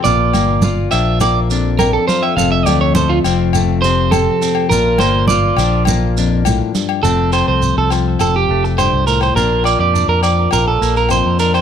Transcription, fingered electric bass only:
X:1
M:4/4
L:1/16
Q:1/4=103
K:F
V:1 name="Fingered electric bass" clef=bass
B,,,2 G,,,4 B,,,8 z2 | F,,,2 D,,4 F,,,8 z2 | B,,,2 G,,,4 B,,,8 z2 | F,,,3 C,,2 C,,3 F,,,2 F,,,3 C,,3 |
B,,,3 F,,2 F,,3 B,,,2 B,,,3 F,,3 |]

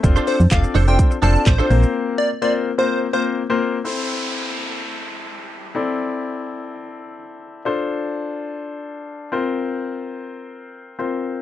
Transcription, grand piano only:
X:1
M:4/4
L:1/16
Q:1/4=126
K:Aphr
V:1 name="Grand piano"
[CDFAc]3 z [CDFAd]2 z [CDFAc]2 z [CDFAd]2 z [CDFAc] [B,CFBc]2- | [B,CFBc]3 z [B,CFBc]2 z [B,CFBc]2 z [B,CFBc]2 z [B,CFBc]2 z | [CEAc]16 | [CEAd]16 |
[DFAc]12- [DFAc]2 [CFBc]2- | [CFBc]12 [CFBc]4 |]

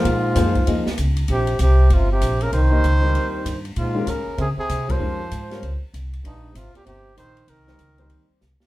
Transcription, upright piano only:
X:1
M:4/4
L:1/8
Q:"Swing" 1/4=194
K:Cphr
V:1 name="Upright piano"
z2 [F,B,EAc] z [F,B,EAe] z3 | z8 | z [B,EGBe] z [G,CEGB]3 z2 | z [E,A,DGB] z4 z [G,CFBd] |
[E,A,DGB] z2 [G,CFBd] z4 | z8 | z [G,CEGc] z [G,CEGc]3 z2 |]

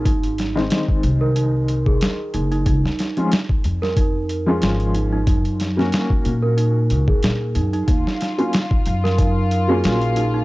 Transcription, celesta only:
X:1
M:4/4
L:1/16
Q:"Swing 16ths" 1/4=92
K:Ebdor
V:1 name="Celesta"
E z6 B E z2 A3 E E | E z6 B E z2 A3 E E | E z6 B E z2 A3 E E | E z6 B E z2 A3 E E |]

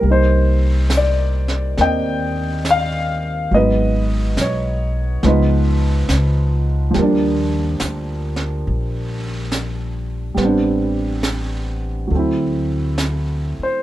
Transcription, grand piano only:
X:1
M:4/4
L:1/8
Q:"Swing" 1/4=70
K:Eb
V:1 name="Grand piano"
c2 d2 g2 f2 | e2 _d2 _c3 z | z8 | z6 z c |]
V:2 name="Grand piano"
[G,B,E]4 [B,Ce]4 | [_G,A,_CE_c]4 [F,A,CEF]4 | [F,G,B,D]8 | [G,=B,CD]4 [^F,=A,C=E]4 |]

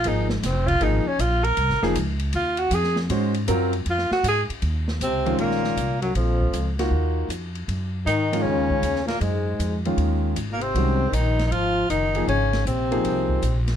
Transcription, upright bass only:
X:1
M:4/4
L:1/8
Q:"Swing" 1/4=157
K:Ebdor
V:1 name="Upright bass" clef=bass
A,,,2 F,,,2 A,,, z B,,,2 | (3C,, A,,, F,,, D,,2 E,,2 F,,2 | A,,2 G,,2 F,, z A,, z | E,,2 D,,2 B,,,2 C,,2 |
B,,,2 D,,2 E,,2 F,,2 | G,,2 A,,2 (3F,, E,, D,, E,,2 | G,,2 F,,2 E,,2 A,,,2 | C,,2 B,,,2 A,,,2 G,,,2 |
A,,,2 B,,,2 C,,2 B,,,2 |]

